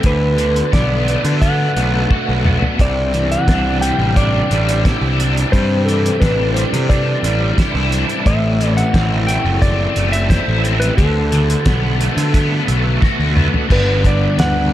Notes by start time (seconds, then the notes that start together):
Already playing: A4
0.03 D2 D3 B3 D4 F#4 B4, kick, closed hi-hat
0.38 D3, closed hi-hat
0.56 closed hi-hat
0.72 B1 B3 D5, kick, snare, closed hi-hat
1.07 A3, closed hi-hat
1.24 D3, closed hi-hat
1.41 B3 F#5, kick, closed hi-hat
1.76 B1 A3, closed hi-hat
2.10 F#4, kick
2.29 B1
2.45 B3, mid tom
2.62 floor tom
2.79 C2 C3 C4 E4 G4 D5, kick, closed hi-hat
3.14 E3, closed hi-hat
3.32 F#5, closed hi-hat
3.48 C2 D4, kick, snare, closed hi-hat
3.81 G3 G5, closed hi-hat
3.98 A1
4.16 D4 D5, kick, closed hi-hat
4.51 A1 G3, closed hi-hat
4.69 closed hi-hat
4.85 E4, kick, snare, closed hi-hat
5.01 C2
5.20 D4, closed hi-hat
5.37 closed hi-hat
5.52 G2 C3 C5, kick, closed hi-hat
5.85 E3 A4, closed hi-hat
6.06 closed hi-hat
6.20 A1 D4 B4, kick, snare, closed hi-hat
6.54 G3 C5, closed hi-hat
6.73 C3, snare, closed hi-hat
6.89 D4 D5, kick, closed hi-hat
7.23 A1 G3, closed hi-hat
7.58 E4, kick, snare, closed hi-hat
7.75 C2
7.92 D4, closed hi-hat
8.09 closed hi-hat
8.26 A1 A2 A3 A4 E5, kick, closed hi-hat
8.61 E3, closed hi-hat
8.77 F#5, closed hi-hat
8.94 A1 C4, kick, snare, closed hi-hat
9.27 A3 G5, closed hi-hat
9.45 F#1
9.62 C4 D5, kick, closed hi-hat
9.96 F#1 A3, closed hi-hat
10.12 E5, closed hi-hat
10.30 E4 C5, kick, snare, closed hi-hat
10.48 A1
10.64 C4, closed hi-hat
10.80 B4, closed hi-hat
10.97 D2 D3 B3 D4 F#4 A4, kick, closed hi-hat
11.32 D3, closed hi-hat
11.50 closed hi-hat
11.66 B1 B3, kick, snare, closed hi-hat
12.00 A3, closed hi-hat
12.17 D3, closed hi-hat
12.34 B3, kick, closed hi-hat
12.68 B1 A3, closed hi-hat
13.01 F#4, kick, snare
13.19 D2
13.36 B3, mid tom
13.54 floor tom
13.68 G1 G2 D3 G3 B3 D4 G4 B4, kick, crash
14.04 D5, kick, closed hi-hat
14.38 D2 F#5, snare, closed hi-hat